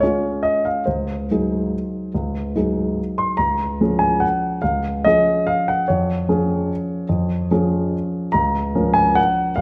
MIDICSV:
0, 0, Header, 1, 2, 480
1, 0, Start_track
1, 0, Key_signature, -5, "major"
1, 0, Tempo, 424028
1, 984, Time_signature, 3, 2, 24, 8
1, 3384, Tempo, 411805
1, 11104, End_track
2, 0, Start_track
2, 0, Title_t, "Grand piano"
2, 0, Program_c, 0, 0
2, 0, Control_c, 0, 64, 127
2, 4, Note_on_c, 0, 73, 70
2, 29, Note_on_c, 0, 56, 34
2, 33, Control_c, 0, 64, 0
2, 34, Note_on_c, 0, 61, 37
2, 37, Note_on_c, 0, 65, 41
2, 483, Note_on_c, 0, 75, 66
2, 495, Note_off_c, 0, 73, 0
2, 736, Note_on_c, 0, 77, 60
2, 737, Note_off_c, 0, 75, 0
2, 941, Note_off_c, 0, 56, 0
2, 944, Note_off_c, 0, 61, 0
2, 946, Note_off_c, 0, 65, 0
2, 968, Note_on_c, 0, 72, 48
2, 978, Note_off_c, 0, 77, 0
2, 988, Note_on_c, 0, 37, 40
2, 1196, Control_c, 0, 64, 127
2, 1451, Note_off_c, 0, 37, 0
2, 1484, Note_on_c, 0, 54, 35
2, 1486, Note_on_c, 0, 63, 36
2, 1488, Note_on_c, 0, 68, 40
2, 1972, Control_c, 0, 64, 0
2, 2392, Note_off_c, 0, 54, 0
2, 2393, Note_off_c, 0, 63, 0
2, 2394, Note_off_c, 0, 68, 0
2, 2428, Note_on_c, 0, 37, 40
2, 2643, Control_c, 0, 64, 127
2, 2884, Note_off_c, 0, 37, 0
2, 2892, Note_on_c, 0, 63, 36
2, 2894, Note_on_c, 0, 54, 35
2, 2905, Note_on_c, 0, 68, 37
2, 3377, Note_off_c, 0, 72, 0
2, 3395, Control_c, 0, 64, 0
2, 3607, Note_on_c, 0, 84, 68
2, 3813, Note_off_c, 0, 63, 0
2, 3814, Note_off_c, 0, 54, 0
2, 3820, Note_off_c, 0, 68, 0
2, 3829, Note_on_c, 0, 82, 73
2, 3850, Note_on_c, 0, 37, 37
2, 3852, Note_off_c, 0, 84, 0
2, 4044, Control_c, 0, 64, 127
2, 4321, Note_off_c, 0, 37, 0
2, 4338, Note_on_c, 0, 53, 40
2, 4345, Note_on_c, 0, 61, 36
2, 4346, Note_on_c, 0, 68, 41
2, 4549, Note_on_c, 0, 80, 66
2, 4570, Note_off_c, 0, 82, 0
2, 4796, Note_on_c, 0, 78, 69
2, 4813, Note_off_c, 0, 80, 0
2, 4848, Control_c, 0, 64, 0
2, 5265, Note_off_c, 0, 53, 0
2, 5269, Note_off_c, 0, 61, 0
2, 5269, Note_off_c, 0, 68, 0
2, 5281, Note_on_c, 0, 77, 66
2, 5296, Note_off_c, 0, 78, 0
2, 5304, Note_on_c, 0, 37, 44
2, 5506, Control_c, 0, 64, 127
2, 5766, Note_off_c, 0, 37, 0
2, 5769, Note_off_c, 0, 77, 0
2, 5780, Note_on_c, 0, 75, 77
2, 5796, Note_on_c, 0, 53, 39
2, 5801, Control_c, 0, 64, 0
2, 5802, Note_on_c, 0, 61, 39
2, 5804, Note_on_c, 0, 68, 42
2, 6271, Note_on_c, 0, 77, 75
2, 6283, Note_off_c, 0, 75, 0
2, 6521, Note_on_c, 0, 78, 69
2, 6525, Note_off_c, 0, 77, 0
2, 6724, Note_off_c, 0, 53, 0
2, 6727, Note_off_c, 0, 61, 0
2, 6728, Note_off_c, 0, 68, 0
2, 6751, Note_on_c, 0, 73, 57
2, 6760, Note_off_c, 0, 78, 0
2, 6771, Note_on_c, 0, 41, 44
2, 6989, Control_c, 0, 64, 127
2, 7216, Note_off_c, 0, 41, 0
2, 7226, Note_on_c, 0, 53, 43
2, 7232, Note_on_c, 0, 61, 44
2, 7232, Note_on_c, 0, 68, 48
2, 7727, Control_c, 0, 64, 0
2, 8136, Note_off_c, 0, 53, 0
2, 8139, Note_off_c, 0, 61, 0
2, 8140, Note_off_c, 0, 68, 0
2, 8167, Note_on_c, 0, 41, 50
2, 8382, Control_c, 0, 64, 127
2, 8636, Note_off_c, 0, 41, 0
2, 8654, Note_on_c, 0, 53, 42
2, 8660, Note_on_c, 0, 61, 42
2, 8662, Note_on_c, 0, 68, 43
2, 9147, Note_off_c, 0, 73, 0
2, 9161, Control_c, 0, 64, 0
2, 9581, Note_off_c, 0, 53, 0
2, 9584, Note_off_c, 0, 61, 0
2, 9585, Note_off_c, 0, 68, 0
2, 9598, Note_on_c, 0, 82, 75
2, 9623, Note_on_c, 0, 37, 51
2, 9844, Control_c, 0, 64, 127
2, 10089, Note_off_c, 0, 37, 0
2, 10101, Note_on_c, 0, 61, 42
2, 10102, Note_on_c, 0, 53, 43
2, 10104, Note_on_c, 0, 70, 44
2, 10315, Note_on_c, 0, 80, 77
2, 10335, Note_off_c, 0, 82, 0
2, 10570, Note_on_c, 0, 78, 85
2, 10578, Note_off_c, 0, 80, 0
2, 10610, Control_c, 0, 64, 0
2, 11016, Note_off_c, 0, 53, 0
2, 11016, Note_off_c, 0, 61, 0
2, 11017, Note_off_c, 0, 70, 0
2, 11039, Note_on_c, 0, 77, 73
2, 11052, Note_off_c, 0, 78, 0
2, 11055, Note_on_c, 0, 36, 54
2, 11104, Note_off_c, 0, 36, 0
2, 11104, Note_off_c, 0, 77, 0
2, 11104, End_track
0, 0, End_of_file